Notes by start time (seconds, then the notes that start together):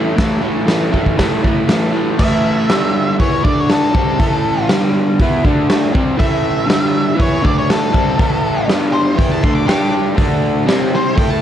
Already playing: A2 E3 A3
0.17 A2 E3 A3, kick, snare, open hi-hat
0.41 A2 E3 A3
0.66 A2 E3 A3, snare, open hi-hat
0.91 A2 E3 A3, kick
1.06 kick
1.17 A2 E3 A3, kick, snare, open hi-hat
1.43 A2 E3 A3, kick
1.68 A2 E3 A3, snare, open hi-hat
1.92 A2 E3 A3
2.19 A2 E3 A3 E5, kick, crash
2.70 G2 D3 G3, snare, open hi-hat
3.19 E3 B3 E4 C#5, kick, open hi-hat
3.44 D3 A3 D4 D5, kick
3.60 C#5
3.69 A4, snare, open hi-hat
3.94 C3 G3 C4, kick
4.19 A2 E3 A3, kick, open hi-hat
4.69 G2 D3 G3, snare, open hi-hat
5.19 E3 B3 E4, kick, open hi-hat
5.44 D3 A3 D4, kick
5.70 snare, open hi-hat
5.93 C3 G3 C4, kick
6.17 A2 E3 A3 E5, kick, open hi-hat
6.67 G2 D3 G3, snare, open hi-hat
7.16 E3 B3 E4, kick, open hi-hat
7.21 C#5
7.42 D3 A3 D4 D5, kick
7.58 C#5
7.70 A4, snare, open hi-hat
7.92 C3 G3 C4, kick
8.17 A2 E3 A3, kick, open hi-hat
8.67 G2 D3 G3, snare, open hi-hat
8.93 C5
9.16 E3 B3 E4 G5, kick, open hi-hat
9.32 A5
9.43 D3 A3 D4 C6, kick
9.55 D6
9.66 G3 D4 G4 D6, snare, open hi-hat
10.16 D3 A3 D4, kick, open hi-hat
10.66 C3 G3 C4, snare, open hi-hat
10.95 C5
11.16 A3 E4 A4 G5, kick, open hi-hat
11.30 A5